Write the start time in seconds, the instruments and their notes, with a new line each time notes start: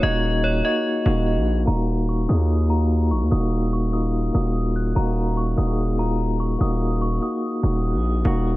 Already playing: tine electric piano D#4 F4 F#4 G#4
0.00 808-style bass D#1, tine electric piano A#3 D#4, synth bell D#5
0.04 tine electric piano F#4
0.44 synth bell C#5
0.63 tine electric piano A#3 D#4 F#4, synth bell D#5
1.04 808-style bass D#1, tine electric piano A#3 D#4 F#4
1.36 808-style bass A#1
1.66 808-style bass D#1, tine electric piano A#3 D#4 F#4, synth bell A#5
2.09 synth bell C#6
2.27 808-style bass D#2, tine electric piano A#3 D#4 G#4, synth bell D#6
2.38 tine electric piano A#3 D#4 F4
2.69 tine electric piano A#3 D#4 F#4, synth bell A#5
3.11 808-style bass A#1, synth bell C#6
3.22 808-style bass D#2
3.30 808-style bass D#1, tine electric piano A#3 D#4 F#4, synth bell D#6
3.73 synth bell C#6
3.92 tine electric piano A#3 D#4 F4, synth bell D#6
4.33 808-style bass D#1, tine electric piano A#3 D#4 F#4, synth bell D#6
4.76 synth bell F#6
4.95 808-style bass D#1, tine electric piano A#3 D#4 F#4, synth bell A#5
5.37 synth bell C#6
5.56 808-style bass D#1, tine electric piano A#3 D#4 F#4, synth bell D#6
5.67 tine electric piano A#3 D#4 G#4
5.97 tine electric piano A#3 D#4 F4, synth bell A#5
6.40 synth bell C#6
6.59 808-style bass D#1, tine electric piano A#3 D#4 F#4, synth bell D#6
7.02 synth bell C#6
7.20 tine electric piano A#3 D#4 F#4, synth bell D#6
7.62 808-style bass D#1, tine electric piano A#3 D#4 F#4
7.94 808-style bass A#1
8.24 808-style bass D#1, tine electric piano A#3 D#4 F#4